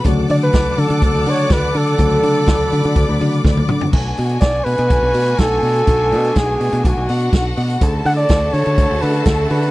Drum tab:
CC |----------------|----------------|x---------------|----------------|
HH |x-oxx-oxx-oxx-ox|x-oxx-oxx-ox----|--oxx-oxx-oxx-ox|x-oxx-oxx-oxx-ox|
SD |----o-------o---|----o-------o---|----o-------o---|----o-------o---|
T1 |----------------|-------------o--|----------------|----------------|
T2 |----------------|--------------o-|----------------|----------------|
FT |----------------|---------------o|----------------|----------------|
BD |o---o---o---o---|o---o---o---o---|o---o---o---o---|o---o---o---o---|

CC |----------------|
HH |x-oxx-oxx-oxx-ox|
SD |----o-------o---|
T1 |----------------|
T2 |----------------|
FT |----------------|
BD |o---o---o---o---|